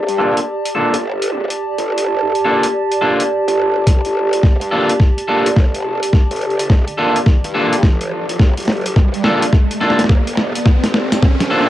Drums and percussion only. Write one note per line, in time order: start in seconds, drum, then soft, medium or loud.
0.09 closed hi-hat soft
0.37 closed hi-hat medium
0.65 closed hi-hat medium
0.94 closed hi-hat medium
1.22 closed hi-hat medium
1.50 closed hi-hat medium
1.78 closed hi-hat soft
1.98 closed hi-hat medium
2.35 closed hi-hat soft
2.63 closed hi-hat medium
2.92 closed hi-hat medium
3.20 closed hi-hat medium
3.48 closed hi-hat soft
3.87 kick medium
3.87 snare medium
3.87 closed hi-hat medium
4.05 closed hi-hat soft
4.33 closed hi-hat medium
4.43 kick loud
4.43 snare soft
4.61 closed hi-hat soft
4.89 closed hi-hat medium
5.00 kick loud
5.00 snare medium
5.18 closed hi-hat soft
5.46 closed hi-hat medium
5.56 kick loud
5.56 snare medium
5.75 closed hi-hat soft
6.03 closed hi-hat medium
6.13 kick medium
6.13 snare medium
6.31 closed hi-hat soft
6.36 closed hi-hat soft
6.41 closed hi-hat soft
6.50 closed hi-hat soft
6.59 closed hi-hat medium
6.70 kick loud
6.70 snare medium
6.88 closed hi-hat soft
7.16 closed hi-hat medium
7.26 kick loud
7.26 snare medium
7.44 closed hi-hat medium
7.73 closed hi-hat medium
7.83 kick medium
7.83 snare medium
8.01 closed hi-hat medium
8.29 closed hi-hat medium
8.39 kick loud
8.39 snare medium
8.57 closed hi-hat soft
8.60 closed hi-hat soft
8.63 closed hi-hat soft
8.65 snare medium
8.65 closed hi-hat soft
8.72 closed hi-hat soft
8.77 closed hi-hat soft
8.81 closed hi-hat soft
8.86 closed hi-hat medium
8.96 kick loud
8.96 snare medium
9.14 closed hi-hat soft
9.24 snare medium
9.42 closed hi-hat medium
9.53 kick loud
9.53 snare medium
9.71 closed hi-hat medium
9.81 snare soft
9.90 snare medium
9.99 snare medium
9.99 closed hi-hat medium
10.04 snare medium
10.09 kick loud
10.09 snare medium
10.27 closed hi-hat medium
10.37 snare medium
10.55 closed hi-hat medium
10.66 kick loud
10.66 snare medium
10.84 snare medium
10.84 closed hi-hat soft
10.94 snare loud
11.12 snare medium
11.12 closed hi-hat medium
11.23 kick loud
11.23 snare medium
11.41 snare medium
11.41 closed hi-hat soft